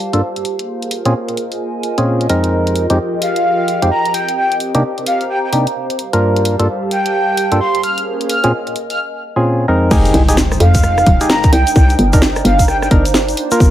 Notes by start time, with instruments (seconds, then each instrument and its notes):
Already playing: analog synth pad G3 F4 A#4 D5 A5, ambient pad G4 C5 F5 A5
0.13 synth stab G2 A#3 D4 F4 A4, closed hi-hat
0.36 closed hi-hat
0.45 analog synth pad A#3 F4 G#4 A#4 C5, ambient pad A#4, open hi-hat
0.59 closed hi-hat
0.82 ambient pad D#5, closed hi-hat
0.91 open hi-hat
1.05 synth stab A#2 C4 C#4 F4 G#4, closed hi-hat
1.29 closed hi-hat
1.34 ambient pad G#5, open hi-hat
1.52 open hi-hat
1.83 open hi-hat
1.98 synth stab A#2 C4 C#4 F4 G#4, closed hi-hat
2.21 closed hi-hat
2.30 synth stab F2 G#3 C4 D#4 A#4, open hi-hat
2.44 closed hi-hat
2.52 analog synth pad F3 G4 G#4 D#5, ambient pad F4
2.67 closed hi-hat
2.76 ambient pad G5, open hi-hat
2.90 synth stab F2 G#3 C4 D#4 G4, closed hi-hat
3.22 soft synth lead F5, open hi-hat
3.36 closed hi-hat
3.68 open hi-hat
3.82 synth stab F2 G#3 C4 D#4 G4, closed hi-hat
3.91 soft synth lead A#5
4.05 closed hi-hat
4.14 analog synth pad C4 G4 A#4 D6, ambient pad C5, soft synth lead G5, open hi-hat
4.29 closed hi-hat
4.37 soft synth lead G5
4.45 ambient pad F5
4.52 closed hi-hat
4.60 open hi-hat
4.75 synth stab C3 A#3 D4 D#4 G4, closed hi-hat
4.98 ambient pad A#5, closed hi-hat
5.06 soft synth lead F5, open hi-hat
5.21 open hi-hat
5.30 soft synth lead G5
5.44 soft synth lead G5
5.53 synth stab C3 A#3 D4 D#4 G4, open hi-hat
5.67 closed hi-hat
5.90 closed hi-hat
5.99 analog synth pad G3 A#4 F5 A5, ambient pad G4, open hi-hat
6.13 synth stab G2 A#3 D4 F4 A#4, closed hi-hat
6.36 closed hi-hat
6.45 open hi-hat
6.55 ambient pad A5
6.59 synth stab G2 A#3 D4 F4 A4, closed hi-hat
6.91 soft synth lead G5, open hi-hat
7.06 closed hi-hat
7.37 open hi-hat
7.52 synth stab G2 A#3 D4 F4 A4, closed hi-hat
7.61 soft synth lead C6
7.75 closed hi-hat
7.83 analog synth pad A#3 C#4 G#4 C5, ambient pad A#4, soft synth lead F6, open hi-hat
7.98 closed hi-hat
8.21 closed hi-hat
8.26 ambient pad D#5, soft synth lead F6, open hi-hat
8.44 synth stab A#2 C4 C#4 F4 G#4, closed hi-hat
8.67 closed hi-hat
8.76 ambient pad G#5, open hi-hat
8.90 soft synth lead F6, open hi-hat
9.36 synth stab A#2 C4 C#4 F4 G#4
9.68 synth stab F2 G#3 C4 D#4 A#4
9.91 fm bass F1, analog synth pad G#3 D#4 C5 G5, synth stab D#4 G4 G#4, kick, crash, impact, shaker
10.05 closed hi-hat, shaker
10.14 fm bass C2, open hi-hat
10.29 synth stab D#4 G4 G#4, closed hi-hat, shaker
10.37 snare, shaker
10.52 cross-stick, shaker
10.60 fm bass F2, soft synth lead F5, ambient pad G5, open hi-hat
10.75 kick, closed hi-hat, shaker
10.83 cross-stick, shaker
10.98 cross-stick, shaker
11.06 fm bass D#1, kick, open hi-hat
11.21 synth stab D#4 G4 G#4, closed hi-hat, shaker
11.30 soft synth lead A#5, snare, shaker
11.44 kick, closed hi-hat, shaker
11.53 fm bass C2, analog synth pad D4 A#4, ambient pad C5, soft synth lead G5, open hi-hat
11.67 closed hi-hat, shaker
11.75 fm bass C2, soft synth lead G5, kick, shaker
11.90 closed hi-hat, shaker
11.99 fm bass G1, open hi-hat
12.13 synth stab D4 D#4 A#4, ambient pad F5, kick, closed hi-hat, shaker
12.22 snare, shaker
12.36 ambient pad A#5, cross-stick, shaker
12.45 fm bass G1, soft synth lead F5, open hi-hat
12.59 kick, closed hi-hat, shaker
12.68 soft synth lead G5, cross-stick, shaker
12.82 soft synth lead G5, cross-stick, shaker
12.91 fm bass G1, synth stab D4 D#4 A#4, kick, open hi-hat
13.05 closed hi-hat, shaker
13.14 snare, shaker
13.29 closed hi-hat, shaker
13.37 analog synth pad A#3 F4 A5, open hi-hat
13.51 synth stab A#3 F4 A#4, closed hi-hat, shaker
13.60 fm bass G1, kick, shaker